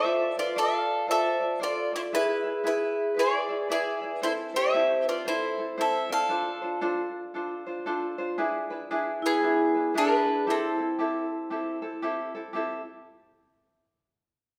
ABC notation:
X:1
M:4/4
L:1/8
Q:"Swing" 1/4=115
K:Am
V:1 name="Vibraphone"
c B d2 c2 A A | ^G2 G2 B2 B2 | A c2 B A2 c d- | d2 z6 |
z3 E3 ^G2 | E6 z2 | z8 |]
V:2 name="Mandolin"
[Ae] [Fd] [Af]2 [Ae]2 [Fd] [Ec] | [EB]2 [EB]2 [^Gd]2 [Gd]2 | [Ec] [Ge]2 [Fd] [Ec]2 [Ae] [Af]- | [Af]2 z6 |
z3 [B,^G]3 [DB]2 | [CA]6 z2 | z8 |]
V:3 name="Ukulele"
[FAcd] [FAd] [FAcd]2 [FAcd] [FAd] [FAcd] [FAd] | [E^GBe] [EGe] [EGBe]2 [EGBe] [EGe] [EGBe] [EGe] | [CEAc] [CEA] [CEAc]2 [CEAc] [CEA] [CEAc] [CEA] | [DFAc] [DFc] [DFAc]2 [DFAc] [DFc] [DFAc] [DFc] |
[DE^GB] [DEB] [DEGB]2 [DEGB] [DEB] [DEGB] [DEB] | [CEGA] [CEA] [CEGA]2 [CEGA] [CEA] [CEGA] [CEA] | [CEGA] z6 z |]